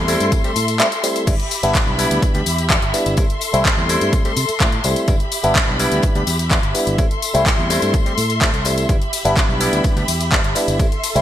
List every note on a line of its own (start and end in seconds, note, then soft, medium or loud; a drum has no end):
0.00 0.14 E2 medium
0.00 1.25 A4 medium
0.00 5.04 E5 medium
0.00 1.25 C6 medium
0.08 0.41 G3 medium
0.08 0.41 A3 medium
0.08 0.41 C4 medium
0.08 0.41 E4 medium
0.08 open hi-hat medium
0.08 tambourine medium
0.20 0.29 G2 medium
0.20 closed hi-hat medium
0.20 tambourine soft
0.32 kick loud
0.32 closed hi-hat medium
0.32 tambourine soft
0.32 tambourine medium
0.44 0.50 G3 medium
0.44 0.50 A3 medium
0.44 0.50 C4 medium
0.44 0.50 G4 medium
0.44 closed hi-hat soft
0.44 tambourine soft
0.56 0.80 A2 medium
0.56 open hi-hat loud
0.56 tambourine medium
0.68 closed hi-hat medium
0.68 tambourine soft
0.79 0.86 G3 medium
0.79 0.86 A3 medium
0.79 0.86 C4 medium
0.79 0.86 E4 loud
0.79 clap loud
0.79 closed hi-hat medium
0.79 tambourine soft
0.79 tambourine medium
0.92 closed hi-hat soft
0.92 tambourine soft
1.03 1.24 G3 medium
1.03 1.24 A3 medium
1.03 1.25 C4 medium
1.03 1.25 E4 medium
1.03 open hi-hat medium
1.03 tambourine medium
1.16 closed hi-hat medium
1.16 tambourine soft
1.27 1.36 G1 loud
1.27 1.34 G3 medium
1.27 1.34 B3 medium
1.27 1.34 D4 medium
1.27 1.34 E4 medium
1.27 3.16 G4 medium
1.27 3.16 B5 loud
1.27 kick loud
1.27 closed hi-hat medium
1.27 crash medium
1.27 tambourine soft
1.40 closed hi-hat soft
1.40 tambourine soft
1.51 open hi-hat loud
1.51 tambourine medium
1.63 1.72 G1 loud
1.63 1.96 G3 medium
1.63 1.96 B3 medium
1.63 1.96 D4 medium
1.63 1.96 E4 loud
1.63 closed hi-hat medium
1.63 tambourine soft
1.75 kick loud
1.75 clap loud
1.75 closed hi-hat medium
1.75 tambourine medium
1.75 tambourine soft
1.87 2.05 B1 medium
1.87 tambourine soft
1.98 2.31 G3 medium
1.98 2.32 B3 medium
1.98 2.32 D4 medium
1.98 2.32 E4 medium
1.98 open hi-hat medium
1.98 tambourine medium
2.11 2.20 D2 medium
2.11 closed hi-hat medium
2.11 tambourine soft
2.22 kick loud
2.22 closed hi-hat medium
2.22 tambourine soft
2.34 2.43 D2 medium
2.34 2.40 G3 medium
2.34 2.41 B3 medium
2.34 2.41 D4 medium
2.34 2.41 G4 medium
2.34 closed hi-hat soft
2.34 tambourine soft
2.46 2.77 E2 loud
2.46 open hi-hat loud
2.46 tambourine medium
2.58 closed hi-hat medium
2.58 tambourine soft
2.69 2.76 G3 medium
2.69 2.76 B3 medium
2.69 2.76 D4 medium
2.69 2.76 E4 loud
2.69 kick loud
2.69 clap loud
2.69 closed hi-hat medium
2.69 tambourine medium
2.69 tambourine soft
2.82 2.91 G1 medium
2.82 closed hi-hat soft
2.82 tambourine soft
2.93 3.15 G3 medium
2.93 3.15 B3 medium
2.93 3.15 D4 medium
2.93 3.15 E4 medium
2.93 open hi-hat medium
2.93 tambourine medium
3.06 3.15 G1 medium
3.06 closed hi-hat medium
3.06 tambourine soft
3.17 3.24 G3 medium
3.17 3.24 A3 medium
3.17 3.24 C4 medium
3.17 3.24 E4 loud
3.17 5.06 A4 medium
3.17 5.06 C6 loud
3.17 kick loud
3.17 closed hi-hat medium
3.17 tambourine medium
3.17 tambourine soft
3.30 closed hi-hat soft
3.30 tambourine soft
3.41 open hi-hat loud
3.41 tambourine medium
3.53 3.62 C2 loud
3.53 3.86 G3 medium
3.53 3.86 A3 medium
3.53 3.86 C4 medium
3.53 3.86 E4 loud
3.53 closed hi-hat medium
3.53 tambourine soft
3.65 kick loud
3.65 clap loud
3.65 closed hi-hat medium
3.65 tambourine medium
3.65 tambourine soft
3.77 3.95 E2 medium
3.77 tambourine soft
3.89 4.22 G3 medium
3.89 4.22 A3 medium
3.89 4.22 C4 medium
3.89 4.22 E4 medium
3.89 open hi-hat medium
3.89 tambourine medium
4.01 4.10 G2 medium
4.01 closed hi-hat medium
4.01 tambourine soft
4.13 kick loud
4.13 closed hi-hat medium
4.13 tambourine soft
4.13 tambourine medium
4.25 4.31 G3 medium
4.25 4.31 A3 medium
4.25 4.31 C4 medium
4.25 4.31 G4 medium
4.25 closed hi-hat soft
4.25 tambourine soft
4.37 4.46 C3 loud
4.37 open hi-hat loud
4.37 tambourine medium
4.49 muted fingered electric bass stroke soft
4.49 closed hi-hat medium
4.49 tambourine soft
4.60 4.79 A2 medium
4.60 4.67 G3 medium
4.60 4.67 A3 medium
4.60 4.67 C4 medium
4.60 4.67 E4 loud
4.60 kick loud
4.60 clap loud
4.60 closed hi-hat medium
4.60 tambourine soft
4.72 closed hi-hat soft
4.72 tambourine soft
4.84 4.94 C2 loud
4.84 5.05 G3 medium
4.84 5.05 A3 medium
4.84 5.05 C4 medium
4.84 5.06 E4 medium
4.84 open hi-hat loud
4.84 tambourine loud
4.84 tambourine medium
4.96 closed hi-hat medium
4.96 tambourine soft
5.08 5.17 G1 loud
5.08 5.14 G3 medium
5.08 5.14 B3 medium
5.08 5.14 D4 medium
5.08 5.15 E4 loud
5.08 6.97 G4 medium
5.08 11.22 E5 medium
5.08 6.97 B5 medium
5.08 kick loud
5.08 closed hi-hat medium
5.08 tambourine soft
5.08 tambourine medium
5.20 closed hi-hat soft
5.20 tambourine soft
5.32 open hi-hat loud
5.32 tambourine loud
5.32 tambourine medium
5.43 5.53 G1 loud
5.43 5.76 G3 medium
5.43 5.77 B3 medium
5.43 5.77 D4 medium
5.43 5.77 E4 loud
5.43 closed hi-hat medium
5.43 tambourine soft
5.55 kick loud
5.55 clap loud
5.55 closed hi-hat medium
5.55 tambourine soft
5.55 tambourine medium
5.68 5.86 B1 loud
5.68 tambourine soft
5.79 6.12 G3 medium
5.79 6.12 B3 medium
5.79 6.13 D4 medium
5.79 6.13 E4 medium
5.79 open hi-hat medium
5.79 tambourine medium
5.79 tambourine loud
5.91 6.00 D2 medium
5.91 closed hi-hat medium
5.91 tambourine soft
6.02 kick loud
6.02 closed hi-hat medium
6.02 tambourine soft
6.15 6.24 D2 medium
6.15 6.21 G3 medium
6.15 6.21 B3 medium
6.15 6.22 D4 medium
6.15 6.22 G4 medium
6.15 closed hi-hat soft
6.15 tambourine soft
6.27 6.58 E2 loud
6.27 open hi-hat loud
6.27 tambourine loud
6.27 tambourine medium
6.39 closed hi-hat medium
6.39 tambourine soft
6.50 6.57 G3 medium
6.50 6.57 B3 medium
6.50 6.57 D4 medium
6.50 6.57 E4 loud
6.50 kick loud
6.50 clap loud
6.50 closed hi-hat medium
6.50 tambourine medium
6.50 tambourine soft
6.63 6.72 G1 medium
6.63 closed hi-hat soft
6.63 tambourine soft
6.74 6.96 G3 medium
6.74 6.96 B3 medium
6.74 6.96 D4 medium
6.74 6.96 E4 medium
6.74 open hi-hat loud
6.74 tambourine medium
6.87 6.96 G1 medium
6.87 closed hi-hat medium
6.87 tambourine soft
6.98 7.05 G3 medium
6.98 7.05 A3 medium
6.98 7.05 C4 medium
6.98 7.05 E4 medium
6.98 8.87 A4 medium
6.98 8.87 C6 loud
6.98 kick loud
6.98 closed hi-hat medium
6.98 tambourine medium
6.98 tambourine soft
7.11 closed hi-hat soft
7.11 tambourine soft
7.22 open hi-hat loud
7.22 tambourine loud
7.22 tambourine medium
7.34 7.43 C2 loud
7.34 7.67 G3 medium
7.34 7.67 A3 medium
7.34 7.67 C4 medium
7.34 7.67 E4 loud
7.34 closed hi-hat medium
7.34 tambourine soft
7.46 kick loud
7.46 clap loud
7.46 closed hi-hat medium
7.46 tambourine medium
7.46 tambourine soft
7.58 7.76 E2 loud
7.58 tambourine soft
7.70 8.03 G3 medium
7.70 8.03 A3 medium
7.70 8.03 C4 medium
7.70 8.03 E4 medium
7.70 open hi-hat loud
7.70 tambourine medium
7.70 tambourine loud
7.82 7.91 G2 medium
7.82 closed hi-hat medium
7.82 tambourine soft
7.94 kick loud
7.94 closed hi-hat medium
7.94 tambourine medium
7.94 tambourine soft
8.05 8.12 G3 medium
8.05 8.12 A3 medium
8.05 8.12 C4 medium
8.05 8.12 G4 medium
8.05 closed hi-hat soft
8.05 tambourine soft
8.17 8.49 A2 medium
8.17 open hi-hat loud
8.17 tambourine loud
8.17 tambourine medium
8.30 closed hi-hat soft
8.30 tambourine soft
8.41 8.48 G3 medium
8.41 8.48 A3 medium
8.41 8.48 C4 medium
8.41 8.48 E4 loud
8.41 kick loud
8.41 clap loud
8.41 closed hi-hat medium
8.41 tambourine medium
8.41 tambourine soft
8.54 8.84 C2 medium
8.54 closed hi-hat soft
8.54 tambourine soft
8.65 8.86 G3 medium
8.65 8.86 A3 medium
8.65 8.86 C4 medium
8.65 8.86 E4 medium
8.65 open hi-hat loud
8.65 tambourine medium
8.78 closed hi-hat medium
8.78 tambourine soft
8.89 8.98 G1 loud
8.89 8.95 G3 medium
8.89 8.95 B3 medium
8.89 8.95 D4 medium
8.89 8.96 E4 medium
8.89 10.78 G4 medium
8.89 10.78 B5 medium
8.89 kick loud
8.89 closed hi-hat medium
8.89 tambourine soft
8.89 tambourine medium
9.02 closed hi-hat soft
9.02 tambourine soft
9.13 open hi-hat loud
9.13 ride medium
9.13 tambourine loud
9.13 tambourine medium
9.25 9.34 G1 loud
9.25 9.57 G3 loud
9.25 9.58 B3 medium
9.25 9.58 D4 medium
9.25 9.58 E4 loud
9.25 closed hi-hat soft
9.25 tambourine soft
9.37 kick loud
9.37 clap loud
9.37 closed hi-hat medium
9.37 tambourine soft
9.49 9.67 B1 medium
9.49 tambourine soft
9.60 9.93 G3 medium
9.60 9.94 B3 medium
9.60 9.94 D4 medium
9.60 9.94 E4 medium
9.60 open hi-hat medium
9.60 ride medium
9.60 tambourine loud
9.60 tambourine medium
9.73 9.81 D2 medium
9.73 closed hi-hat medium
9.73 tambourine soft
9.84 kick loud
9.84 closed hi-hat medium
9.84 tambourine soft
9.96 10.05 D2 medium
9.96 10.02 G3 medium
9.96 10.02 B3 medium
9.96 10.03 D4 medium
9.96 10.03 G4 medium
9.96 closed hi-hat soft
9.96 tambourine soft
10.08 10.39 E2 medium
10.08 open hi-hat loud
10.08 ride medium
10.08 tambourine medium
10.20 closed hi-hat medium
10.20 tambourine soft
10.31 10.38 G3 loud
10.31 10.38 B3 medium
10.31 10.38 D4 medium
10.31 10.38 E4 loud
10.31 kick loud
10.31 clap loud
10.31 closed hi-hat medium
10.31 tambourine soft
10.44 10.53 G1 medium
10.44 closed hi-hat soft
10.44 tambourine soft
10.55 10.77 G3 medium
10.55 10.77 B3 medium
10.55 10.77 D4 medium
10.55 10.77 E4 medium
10.55 open hi-hat medium
10.55 ride medium
10.55 tambourine medium
10.68 10.77 G1 medium
10.68 closed hi-hat soft
10.68 tambourine soft
10.79 10.86 G3 medium
10.79 10.86 A3 medium
10.79 10.86 C4 medium
10.79 10.86 E4 medium
10.79 11.22 A4 medium
10.79 11.22 C6 medium
10.79 kick loud
10.79 closed hi-hat medium
10.79 tambourine soft
10.79 tambourine medium
10.92 closed hi-hat soft
10.92 tambourine soft
11.04 open hi-hat loud
11.04 ride medium
11.04 tambourine medium
11.15 11.22 C2 loud
11.15 11.22 G3 medium
11.15 11.22 A3 medium
11.15 11.22 C4 medium
11.15 11.22 E4 loud
11.15 closed hi-hat medium
11.15 tambourine soft